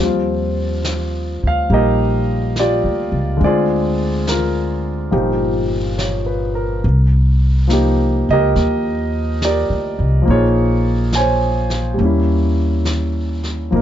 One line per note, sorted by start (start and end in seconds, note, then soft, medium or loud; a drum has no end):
0.00 1.39 D#2 medium
0.00 3.40 F3 soft
0.00 1.68 G3 soft
0.00 3.42 C4 soft
0.05 2.59 F4 soft
0.84 snare soft
0.84 hi-hat pedal soft
1.43 1.68 D2 soft
1.47 1.73 F5 medium
1.70 2.80 A#1 medium
1.70 3.41 G3 soft
1.70 3.42 A#3 soft
1.70 3.43 D#4 soft
1.70 2.58 G4 medium
1.70 3.39 A#4 medium
1.70 2.54 D#5 medium
1.70 brush sweep soft
2.56 3.39 G4 soft
2.56 3.39 D5 medium
2.56 snare soft
2.56 hi-hat pedal soft
2.60 3.40 F4 soft
2.84 3.11 D2 soft
3.12 3.39 C#2 medium
3.37 5.08 D2 medium
3.37 5.10 D3 soft
3.37 5.12 G#3 soft
3.41 5.14 C4 soft
3.41 4.31 D5 medium
3.41 brush sweep soft
3.46 4.29 F4 medium
3.46 5.10 G#4 medium
4.27 5.96 F4 soft
4.27 5.95 A#4 medium
4.27 snare soft
4.27 hi-hat pedal soft
5.11 6.79 G1 medium
5.11 6.83 A#2 soft
5.11 6.83 F3 soft
5.11 6.83 D#4 soft
5.11 6.84 G4 soft
5.11 brush sweep soft
5.98 6.53 C#5 soft
5.98 snare soft
5.98 hi-hat pedal soft
6.26 6.71 B4 soft
6.55 7.00 A#4 soft
6.84 8.24 C2 medium
6.84 brush sweep soft
7.67 10.20 F3 soft
7.67 10.24 A#3 soft
7.67 10.27 D#4 soft
7.67 snare soft
7.67 hi-hat pedal soft
7.73 8.31 G4 soft
8.29 8.53 C#2 medium
8.29 9.43 G4 medium
8.29 9.43 A#4 medium
8.29 9.11 D#5 medium
8.56 9.66 D#2 medium
8.56 brush sweep soft
8.56 snare soft
9.42 10.25 G4 soft
9.42 10.25 A#4 soft
9.42 10.24 D5 medium
9.42 snare soft
9.42 hi-hat pedal soft
9.70 9.96 D2 soft
9.99 10.25 C2 medium
10.22 11.96 F3 soft
10.22 11.97 A#3 soft
10.27 11.95 A#1 medium
10.27 12.00 D#4 soft
10.27 11.10 C#5 medium
10.27 brush sweep soft
10.31 11.97 F4 soft
10.31 11.97 G#4 soft
11.12 11.96 G#5 medium
11.12 snare soft
11.12 hi-hat pedal soft
11.17 11.97 C5 soft
11.17 13.43 C#5 soft
11.70 snare soft
11.94 13.70 G3 soft
11.98 13.68 D#2 medium
11.98 13.71 A#3 soft
11.98 13.73 C#4 soft
11.98 brush sweep soft
12.05 13.75 E4 soft
12.85 snare soft
12.85 hi-hat pedal soft
13.43 snare soft
13.71 13.82 G#1 medium
13.71 13.82 F3 soft
13.71 13.82 A#3 soft
13.71 13.82 D#4 soft
13.71 brush sweep soft
13.76 13.82 A#4 soft